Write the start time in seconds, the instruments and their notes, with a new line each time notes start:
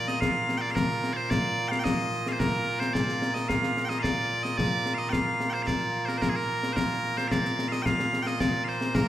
Already playing: bagpipes A#2 A#3 F4
0.08 bagpipes D#5, snare
0.20 bagpipes F5, concert bass drum, snare
0.49 snare
0.58 bagpipes D5 G5
0.71 bagpipes F5
0.75 bagpipes A#4, concert bass drum, snare
0.90 snare
1.04 snare
1.13 bagpipes C5 D5
1.30 bagpipes D5, concert bass drum, snare
1.68 bagpipes F5 G5, snare
1.79 bagpipes G5
1.84 bagpipes D#5, concert bass drum, snare
2.26 bagpipes F5, snare
2.32 bagpipes C5
2.40 bagpipes A#4, concert bass drum, snare
2.54 snare
2.80 bagpipes C5, snare
2.94 bagpipes D5, concert bass drum, snare
3.09 snare
3.22 snare
3.34 bagpipes D#5, snare
3.48 bagpipes F5, concert bass drum, snare
3.64 snare
3.77 snare
3.85 bagpipes G5
3.89 bagpipes D#5, snare
3.99 bagpipes D5 F5
4.04 concert bass drum, snare
4.43 bagpipes D#5, snare
4.57 bagpipes D5, concert bass drum, snare
4.86 snare
4.94 bagpipes D#5 F5
5.09 bagpipes F5 G5, concert bass drum, snare
5.27 snare
5.40 snare
5.50 bagpipes C5 G5
5.54 snare
5.63 bagpipes F5
5.67 bagpipes D5, concert bass drum, snare
6.05 bagpipes A#4 C5, snare
6.18 bagpipes C5
6.22 bagpipes A#4, concert bass drum, snare
6.29 bagpipes G#4
6.36 bagpipes A#4
6.63 snare
6.73 bagpipes A#4 C5, concert bass drum, snare
7.04 snare
7.17 bagpipes C5, snare
7.28 bagpipes D5 F5, concert bass drum, snare
7.45 snare
7.59 snare
7.68 bagpipes D#5 F5
7.72 snare
7.82 bagpipes F5 G5, concert bass drum, snare
8.00 snare
8.13 snare
8.22 bagpipes G5
8.27 bagpipes D#5, snare
8.40 bagpipes D5, concert bass drum, snare
8.64 bagpipes F5, snare
8.68 bagpipes C5
8.81 snare
8.95 bagpipes A#4, concert bass drum, snare